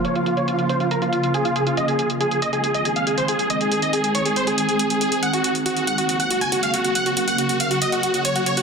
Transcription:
<<
  \new Staff \with { instrumentName = "Supersaw synth" } { \time 4/4 \key aes \mixolydian \tempo 4 = 139 des''16 f'16 f'16 des''16 f'16 f'16 c''16 f'16 bes'16 f'16 f'16 f'16 aes'16 f'16 aes'16 f'16 | ees''16 aes'16 aes'16 r16 aes'16 aes'16 ees''16 aes'16 aes'16 ees''16 aes'16 f''16 aes'16 c''16 aes'16 aes'16 | ees''16 aes'16 aes'16 ees''16 aes'16 aes'16 des''16 aes'16 c''16 aes'16 aes'16 aes'16 aes'16 aes'16 aes'16 aes'16 | ges''16 ges'16 ges'16 r16 ges'16 ges'16 ges''16 ges'16 ges'16 ges''16 ges'16 aes''16 ges'16 f''16 ges'16 ges'16 |
ges''16 ges'16 ges'16 ges''16 ges'16 ges'16 f''16 ges'16 ees''16 ges'16 ges'16 ges'16 des''16 ges'16 des''16 ges'16 | }
  \new Staff \with { instrumentName = "Ambient pad" } { \time 4/4 \key aes \mixolydian <des f bes f'>1 | <ees aes c' aes'>1~ | <ees aes c' aes'>1 | <des ges bes ges'>1~ |
<des ges bes ges'>1 | }
  \new DrumStaff \with { instrumentName = "Drums" } \drummode { \time 4/4 hh16 hh16 hh16 hh16 hh16 hh16 hh16 hh16 hh16 hh16 hh16 hh16 hh16 hh16 hh16 hh16 | hh16 hh16 hh16 hh16 hh16 hh16 hh16 hh16 hh16 hh16 hh16 hh16 hh16 hh16 hh16 hh16 | hh16 hh16 hh16 hh16 hh16 hh16 hh16 hh16 hh16 hh16 hh16 hh16 hh16 hh16 hh16 hh16 | hh16 hh16 hh16 hh16 hh16 hh16 hh16 hh16 hh16 hh16 hh16 hh16 hh16 hh16 hh16 hh16 |
hh16 hh16 hh16 hh16 hh16 hh16 hh16 hh16 hh16 hh16 hh16 hh16 hh16 hh16 hh16 hh16 | }
>>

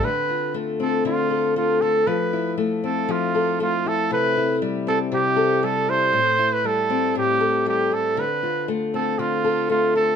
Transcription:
<<
  \new Staff \with { instrumentName = "Trumpet" } { \time 4/4 \key d \dorian \tempo 4 = 118 b'4 r8 a'8 f'4 f'8 a'8 | b'4 r8 a'8 f'4 f'8 a'8 | b'4 r8 a'8 g'4 a'8 c''8~ | c''8. b'16 a'4 g'4 g'8 a'8 |
b'4 r8 a'8 f'4 f'8 a'8 | }
  \new Staff \with { instrumentName = "Steel-string acoustic guitar" } { \time 4/4 \key d \dorian d8 f'8 a8 c'8 d8 a'8 a8 f'8 | f8 e'8 a8 c'8 f8 a'8 a8 e'8 | c8 e'8 g8 c'8 c8 a'8 g8 e'8 | a,8 e'8 g8 c'8 a,8 a'8 g8 e'8 |
d8 f'8 a8 c'8 d8 a'8 a8 f'8 | }
>>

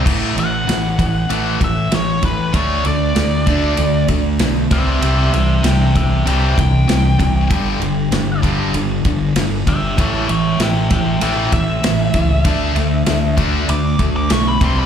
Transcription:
<<
  \new Staff \with { instrumentName = "Lead electric guitar" } { \time 4/4 \key d \major \tempo 4 = 97 r8 fis''2 e''8 cis''8 b'8 | cis''8 d''2 r4 <c'' e''>8 | <c'' e''>8 <c'' e''>8 <e'' g''>8 <e'' g''>8 <e'' g''>8 g''4.~ | g''4. r2 <g' e''>8 |
<cis'' e''>8 <cis'' e''>8 <e'' g''>8 <e'' g''>8 <e'' g''>8 e''4.~ | e''4. r8 d'''8 r16 d'''16 cis'''16 b''16 c'''16 b''16 | }
  \new Staff \with { instrumentName = "Distorted electric guitar" } { \clef bass \time 4/4 \key d \major <a, e a>8 <a, e>8 <a, e>8 <a, e>8 <a, e a>8 <a, e>8 <a, e>8 <a, e>8 | <d a d'>8 <d a>8 <d a>8 <d a d'>8 <d a>8 <d a>8 <d a>8 <c e g>8 | <c e g>8 <c e>8 <c e>8 <c e>8 <c e g>8 <c e>8 <c e>8 <c e>8 | <g, d g>8 <g, d>8 <g, d>8 <g, d g>8 <g, d>8 <g, d>8 <g, d>8 <g, d>8 |
<a, e a>8 <a, e>8 <a, e>8 <a, e>8 <a, e a>8 <a, e>8 <a, e>8 <a, e>8 | <d a d'>8 <d a>8 <d a>8 <d a d'>8 <d a>8 <d a>8 <d a>8 <c e g>8 | }
  \new Staff \with { instrumentName = "Distorted electric guitar" } { \clef bass \time 4/4 \key d \major <a, e a>8 <a, e>8 <a, e>8 <a, e>8 <a, e a>8 <a, e>8 <a, e>8 <a, e>8 | <d a d'>8 <d a>8 <d a>8 <d a d'>8 <d a>8 <d a>8 <d a>8 <c g c'>8 | <c g c'>8 <c g>8 <c g>8 <c g>8 <c g c'>8 <c g>8 <c g>8 <c g>8 | <g, d g>8 <g, d>8 <g, d>8 <g, d g>8 <g, d>8 <g, d>8 <g, d>8 <g, d>8 |
<a, e a>8 <a, e>8 <a, e>8 <a, e>8 <a, e a>8 <a, e>8 <a, e>8 <a, e>8 | <d a d'>8 <d a>8 <d a>8 <d a d'>8 <d a>8 <d a>8 <d a>8 <c g c'>8 | }
  \new Staff \with { instrumentName = "Fingered electric bass" } { \clef bass \time 4/4 \key d \major a,,8 a,,8 a,,4 a,,8 a,,8 a,,8 a,,8 | d,8 d,8 d,4 d,8 d,8 b,,8 c,8 | c,8 c,8 c,4 c,8 c,8 c,8 c,8 | g,,8 g,,8 g,,4 g,,8 g,,8 g,,8 g,,8 |
a,,8 a,,8 a,,4 a,,8 a,,8 a,,8 cis,8 | d,8 d,8 d,4 d,8 d,8 b,,8 c,8 | }
  \new DrumStaff \with { instrumentName = "Drums" } \drummode { \time 4/4 <cymc bd>8 cymr8 <cymr sn>8 <bd cymr>8 cymr8 <bd cymr>8 <cymr sn>8 <bd cymr>8 | <bd cymr>8 cymr8 <cymr sn>8 <bd cymr>8 cymr8 <bd cymr>8 <cymr sn>8 <bd cymr>8 | cymr8 cymr8 <cymr sn>8 <bd cymr>8 cymr8 <bd cymr>8 <cymr sn>8 <bd cymr>8 | <bd cymr>8 cymr8 <cymr sn>8 <bd cymr>8 cymr8 <bd cymr>8 <cymr sn>8 <bd cymr>8 |
<bd cymr>8 cymr8 <cymr sn>8 <bd cymr>8 cymr8 <bd cymr>8 <cymr sn>8 <bd cymr>8 | <bd cymr>8 cymr8 <cymr sn>8 <bd cymr>8 cymr8 <bd cymr>8 <cymr sn>8 <bd cymr>8 | }
>>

